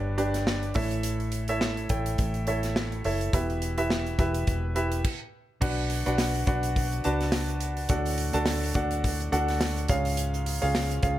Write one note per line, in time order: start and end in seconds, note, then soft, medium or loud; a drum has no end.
0.00 0.72 G1 medium
0.00 0.78 G2 medium
0.00 0.78 D3 medium
0.00 0.18 D4 medium
0.00 0.18 G4 medium
0.00 0.18 B4 medium
0.00 0.75 C#5 medium
0.00 0.18 D5 medium
0.18 0.67 D4 medium
0.18 0.67 G4 medium
0.18 0.67 B4 medium
0.18 0.67 D5 loud
0.18 closed hi-hat medium
0.34 snare soft
0.34 closed hi-hat medium
0.47 snare loud
0.63 closed hi-hat soft
0.74 1.86 A1 medium
0.74 1.57 A2 medium
0.74 1.57 E3 medium
0.74 1.36 E4 medium
0.74 1.36 A4 medium
0.74 1.36 C#5 medium
0.74 1.36 E5 loud
0.74 kick loud
0.74 open hi-hat medium
0.91 closed hi-hat medium
1.03 closed hi-hat medium
1.20 closed hi-hat soft
1.32 closed hi-hat medium
1.48 1.84 E4 medium
1.48 1.84 A4 medium
1.48 1.84 C#5 medium
1.48 1.84 E5 loud
1.48 closed hi-hat medium
1.61 snare loud
1.77 closed hi-hat soft
1.89 2.17 A1 loud
1.89 2.39 E4 medium
1.89 2.39 A4 medium
1.89 2.39 C#5 medium
1.89 2.39 G5 medium
1.89 kick medium
1.89 closed hi-hat medium
2.06 closed hi-hat medium
2.18 3.01 A1 loud
2.18 kick medium
2.18 closed hi-hat medium
2.34 closed hi-hat soft
2.47 2.96 E4 medium
2.47 2.96 A4 medium
2.47 2.96 C#5 medium
2.47 2.97 E5 loud
2.47 closed hi-hat medium
2.63 snare soft
2.63 closed hi-hat medium
2.76 snare loud
2.92 closed hi-hat soft
3.04 3.31 F#1 medium
3.04 3.29 E4 medium
3.04 3.29 A4 medium
3.04 3.29 C#5 medium
3.04 3.29 E5 medium
3.04 open hi-hat medium
3.21 closed hi-hat soft
3.33 4.15 E1 loud
3.33 4.15 B2 medium
3.33 3.70 E4 medium
3.33 3.70 G4 medium
3.33 3.70 B4 medium
3.33 3.70 E5 medium
3.33 kick loud
3.33 closed hi-hat loud
3.50 closed hi-hat soft
3.62 closed hi-hat medium
3.78 4.13 E4 medium
3.78 4.13 G4 medium
3.78 4.13 B4 medium
3.78 4.13 E5 loud
3.78 closed hi-hat medium
3.90 snare loud
4.07 closed hi-hat soft
4.19 4.46 E1 loud
4.19 4.68 E4 medium
4.19 4.68 G4 medium
4.19 4.68 B4 medium
4.19 4.68 E5 medium
4.19 kick loud
4.19 closed hi-hat medium
4.34 closed hi-hat medium
4.47 5.02 E1 loud
4.47 kick medium
4.47 closed hi-hat medium
4.75 5.04 E4 medium
4.75 5.05 G4 medium
4.75 5.04 B4 medium
4.75 5.05 E5 loud
4.75 closed hi-hat medium
4.92 closed hi-hat medium
5.04 kick loud
5.04 crash medium
5.61 6.03 B1 loud
5.61 5.98 D4 medium
5.61 5.98 F#4 medium
5.61 5.98 B4 medium
5.61 5.98 D5 medium
5.61 5.98 F#5 medium
5.61 kick loud
5.61 crash loud
5.78 open hi-hat soft
5.90 hi-hat pedal medium
5.90 open hi-hat medium
6.06 6.45 B1 loud
6.06 6.41 D4 medium
6.06 6.41 F#4 medium
6.06 6.41 B4 medium
6.06 6.41 D5 medium
6.06 6.41 F#5 loud
6.06 hi-hat pedal medium
6.06 open hi-hat medium
6.18 snare loud
6.18 hi-hat pedal medium
6.18 open hi-hat medium
6.34 hi-hat pedal medium
6.34 open hi-hat soft
6.47 7.01 B1 loud
6.47 6.96 D4 medium
6.47 6.96 F#4 medium
6.47 6.96 B4 medium
6.47 6.96 D5 medium
6.47 6.96 F#5 loud
6.47 kick loud
6.47 hi-hat pedal medium
6.47 open hi-hat medium
6.63 hi-hat pedal medium
6.63 open hi-hat medium
6.76 kick medium
6.76 hi-hat pedal medium
6.76 open hi-hat medium
6.92 hi-hat pedal medium
7.04 7.87 C#2 medium
7.04 7.78 D4 medium
7.04 7.78 F#4 medium
7.04 7.78 B4 medium
7.04 7.78 D5 medium
7.04 7.78 A5 loud
7.04 hi-hat pedal medium
7.04 open hi-hat medium
7.21 snare soft
7.21 open hi-hat medium
7.32 snare loud
7.32 hi-hat pedal medium
7.32 open hi-hat medium
7.48 hi-hat pedal medium
7.61 hi-hat pedal medium
7.61 open hi-hat medium
7.77 open hi-hat medium
7.89 8.31 D2 loud
7.89 8.71 A2 medium
7.89 8.26 D4 medium
7.89 8.26 F#4 medium
7.89 8.26 A4 medium
7.89 8.26 D5 medium
7.89 8.26 F#5 medium
7.89 kick loud
7.89 hi-hat pedal medium
7.89 open hi-hat loud
8.05 hi-hat pedal medium
8.05 open hi-hat soft
8.18 hi-hat pedal medium
8.18 open hi-hat medium
8.33 8.73 D2 loud
8.33 8.69 D4 medium
8.33 8.69 F#4 medium
8.33 8.69 A4 medium
8.33 8.69 D5 medium
8.33 8.69 A5 loud
8.33 hi-hat pedal medium
8.33 open hi-hat medium
8.46 snare loud
8.46 hi-hat pedal medium
8.46 open hi-hat medium
8.63 hi-hat pedal medium
8.63 open hi-hat soft
8.74 9.28 D2 loud
8.74 9.24 D4 medium
8.74 9.24 F#4 medium
8.74 9.24 A4 medium
8.74 9.24 D5 medium
8.74 9.24 F#5 medium
8.74 kick loud
8.74 hi-hat pedal medium
8.74 open hi-hat medium
8.91 hi-hat pedal medium
8.91 open hi-hat medium
9.04 kick medium
9.04 hi-hat pedal medium
9.04 open hi-hat medium
9.20 hi-hat pedal medium
9.32 9.86 D2 loud
9.32 9.90 D4 medium
9.32 9.89 F#4 medium
9.32 9.89 A4 medium
9.32 9.89 D5 medium
9.32 9.89 F#5 loud
9.32 hi-hat pedal medium
9.32 open hi-hat medium
9.48 snare soft
9.48 open hi-hat medium
9.61 snare loud
9.61 hi-hat pedal medium
9.61 open hi-hat loud
9.77 hi-hat pedal medium
9.77 open hi-hat soft
9.88 10.59 C#2 loud
9.88 10.71 G#2 medium
9.88 10.49 C#4 medium
9.88 10.49 F4 medium
9.88 10.49 G#4 medium
9.88 10.50 C#5 medium
9.88 10.49 F5 loud
9.88 kick loud
9.88 hi-hat pedal medium
9.88 open hi-hat medium
10.05 hi-hat pedal medium
10.05 open hi-hat medium
10.17 hi-hat pedal medium
10.17 open hi-hat loud
10.34 hi-hat pedal medium
10.46 hi-hat pedal medium
10.46 open hi-hat medium
10.62 11.01 C#2 loud
10.62 10.97 C#4 medium
10.62 10.97 F4 medium
10.62 10.97 G#4 medium
10.62 10.97 C#5 medium
10.62 10.97 F5 loud
10.62 open hi-hat medium
10.75 snare loud
10.75 hi-hat pedal medium
10.75 open hi-hat medium
10.90 hi-hat pedal medium
11.03 11.19 C#2 loud
11.03 11.19 C#4 medium
11.03 11.19 F4 medium
11.03 11.19 G#4 medium
11.03 11.19 C#5 medium
11.03 11.19 F5 loud
11.03 kick loud
11.03 hi-hat pedal medium
11.03 open hi-hat medium